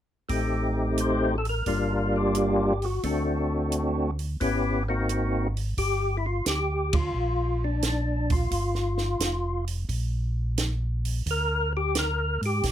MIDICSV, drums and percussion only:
0, 0, Header, 1, 2, 480
1, 0, Start_track
1, 0, Key_signature, -2, "minor"
1, 0, Tempo, 685714
1, 209, Time_signature, 4, 2, 24, 8
1, 8903, End_track
2, 0, Start_track
2, 0, Title_t, "Drums"
2, 204, Note_on_c, 9, 46, 33
2, 206, Note_on_c, 9, 36, 27
2, 274, Note_off_c, 9, 46, 0
2, 276, Note_off_c, 9, 36, 0
2, 683, Note_on_c, 9, 42, 43
2, 753, Note_off_c, 9, 42, 0
2, 1015, Note_on_c, 9, 46, 29
2, 1085, Note_off_c, 9, 46, 0
2, 1162, Note_on_c, 9, 46, 34
2, 1165, Note_on_c, 9, 36, 28
2, 1232, Note_off_c, 9, 46, 0
2, 1235, Note_off_c, 9, 36, 0
2, 1643, Note_on_c, 9, 42, 41
2, 1713, Note_off_c, 9, 42, 0
2, 1974, Note_on_c, 9, 46, 28
2, 2044, Note_off_c, 9, 46, 0
2, 2124, Note_on_c, 9, 46, 38
2, 2127, Note_on_c, 9, 36, 30
2, 2194, Note_off_c, 9, 46, 0
2, 2197, Note_off_c, 9, 36, 0
2, 2603, Note_on_c, 9, 42, 45
2, 2673, Note_off_c, 9, 42, 0
2, 2932, Note_on_c, 9, 46, 30
2, 3002, Note_off_c, 9, 46, 0
2, 3085, Note_on_c, 9, 46, 35
2, 3087, Note_on_c, 9, 36, 28
2, 3155, Note_off_c, 9, 46, 0
2, 3157, Note_off_c, 9, 36, 0
2, 3564, Note_on_c, 9, 42, 42
2, 3634, Note_off_c, 9, 42, 0
2, 3897, Note_on_c, 9, 46, 31
2, 3967, Note_off_c, 9, 46, 0
2, 4044, Note_on_c, 9, 46, 43
2, 4046, Note_on_c, 9, 36, 31
2, 4114, Note_off_c, 9, 46, 0
2, 4116, Note_off_c, 9, 36, 0
2, 4522, Note_on_c, 9, 42, 50
2, 4524, Note_on_c, 9, 38, 62
2, 4592, Note_off_c, 9, 42, 0
2, 4594, Note_off_c, 9, 38, 0
2, 4850, Note_on_c, 9, 51, 64
2, 4855, Note_on_c, 9, 36, 73
2, 4920, Note_off_c, 9, 51, 0
2, 4925, Note_off_c, 9, 36, 0
2, 5478, Note_on_c, 9, 42, 46
2, 5480, Note_on_c, 9, 38, 63
2, 5548, Note_off_c, 9, 42, 0
2, 5550, Note_off_c, 9, 38, 0
2, 5809, Note_on_c, 9, 46, 36
2, 5813, Note_on_c, 9, 36, 53
2, 5879, Note_off_c, 9, 46, 0
2, 5883, Note_off_c, 9, 36, 0
2, 5960, Note_on_c, 9, 46, 43
2, 5962, Note_on_c, 9, 36, 29
2, 6030, Note_off_c, 9, 46, 0
2, 6032, Note_off_c, 9, 36, 0
2, 6123, Note_on_c, 9, 38, 27
2, 6193, Note_off_c, 9, 38, 0
2, 6283, Note_on_c, 9, 38, 37
2, 6353, Note_off_c, 9, 38, 0
2, 6442, Note_on_c, 9, 42, 51
2, 6445, Note_on_c, 9, 38, 64
2, 6512, Note_off_c, 9, 42, 0
2, 6515, Note_off_c, 9, 38, 0
2, 6773, Note_on_c, 9, 46, 37
2, 6843, Note_off_c, 9, 46, 0
2, 6923, Note_on_c, 9, 36, 28
2, 6923, Note_on_c, 9, 46, 38
2, 6993, Note_off_c, 9, 36, 0
2, 6993, Note_off_c, 9, 46, 0
2, 7403, Note_on_c, 9, 42, 49
2, 7406, Note_on_c, 9, 38, 62
2, 7473, Note_off_c, 9, 42, 0
2, 7476, Note_off_c, 9, 38, 0
2, 7734, Note_on_c, 9, 46, 35
2, 7804, Note_off_c, 9, 46, 0
2, 7885, Note_on_c, 9, 46, 44
2, 7886, Note_on_c, 9, 36, 33
2, 7955, Note_off_c, 9, 46, 0
2, 7956, Note_off_c, 9, 36, 0
2, 8365, Note_on_c, 9, 42, 50
2, 8368, Note_on_c, 9, 38, 64
2, 8435, Note_off_c, 9, 42, 0
2, 8438, Note_off_c, 9, 38, 0
2, 8698, Note_on_c, 9, 46, 34
2, 8768, Note_off_c, 9, 46, 0
2, 8844, Note_on_c, 9, 46, 42
2, 8847, Note_on_c, 9, 36, 30
2, 8847, Note_on_c, 9, 38, 33
2, 8903, Note_off_c, 9, 36, 0
2, 8903, Note_off_c, 9, 38, 0
2, 8903, Note_off_c, 9, 46, 0
2, 8903, End_track
0, 0, End_of_file